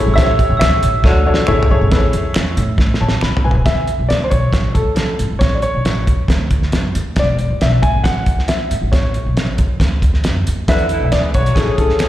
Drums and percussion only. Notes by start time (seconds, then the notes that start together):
0.18 kick, snare, closed hi-hat
0.39 kick, closed hi-hat
0.61 finger snap, snare, closed hi-hat
0.83 closed hi-hat
1.04 kick, snare
1.34 snare
1.47 finger snap, mid tom
1.63 floor tom
1.91 kick, snare, closed hi-hat
2.13 closed hi-hat
2.34 finger snap, snare, closed hi-hat
2.57 closed hi-hat
2.78 kick, snare
2.94 snare
3.09 snare
3.21 finger snap, snare
3.37 floor tom
3.51 floor tom
3.66 kick, snare, closed hi-hat
3.87 closed hi-hat
4.10 snare, closed hi-hat
4.31 kick, closed hi-hat
4.53 kick, snare, closed hi-hat
4.75 kick, closed hi-hat
4.96 snare, closed hi-hat
5.19 closed hi-hat
5.41 kick, snare, closed hi-hat
5.62 closed hi-hat
5.85 snare, closed hi-hat
6.07 kick, closed hi-hat
6.28 kick, snare, closed hi-hat
6.51 kick, closed hi-hat
6.62 snare
6.72 snare, closed hi-hat
6.95 closed hi-hat
7.16 kick, snare, closed hi-hat
7.39 closed hi-hat
7.61 snare, closed hi-hat
7.83 kick, closed hi-hat
8.04 kick, snare, closed hi-hat
8.26 kick, closed hi-hat
8.39 snare
8.48 snare, closed hi-hat
8.71 closed hi-hat
8.93 kick, snare, closed hi-hat
9.14 closed hi-hat
9.37 snare, closed hi-hat
9.58 kick, closed hi-hat
9.80 kick, snare, closed hi-hat
10.02 kick, closed hi-hat
10.14 snare
10.24 snare, closed hi-hat
10.47 closed hi-hat
10.68 kick, snare, closed hi-hat
10.79 closed hi-hat
10.89 closed hi-hat
11.12 finger snap, snare, closed hi-hat
11.34 kick, closed hi-hat
11.46 closed hi-hat
11.56 kick, snare, closed hi-hat
11.78 kick, closed hi-hat
11.89 snare
11.99 finger snap, snare, closed hi-hat